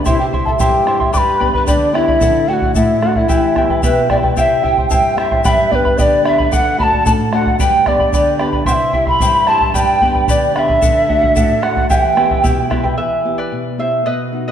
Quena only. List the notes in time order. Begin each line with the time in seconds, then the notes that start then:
0.05 E5
0.19 G5
0.45 A5
0.59 G5
1.13 D6
1.18 B5
1.54 B5
1.67 D5
1.94 E5
2.48 G5
2.53 F#5
2.76 E5
3.03 F#5
3.17 E5
3.83 B4
4.11 D5
4.37 E5 F#5
4.64 G5
4.90 A5
4.94 G5
5.17 E5
5.44 F#5
5.48 E5
5.72 B4 D5
5.98 D5 D#5
6.25 E5
6.52 F#5
6.79 B5
6.83 A5
7.06 A5
7.33 F#5
7.60 G5
7.87 D5
8.68 F#5
8.73 E5
9.09 B5
9.48 A5
9.75 G5
10.29 D5
10.55 F#5
10.59 E5
11.63 F#5
11.90 G5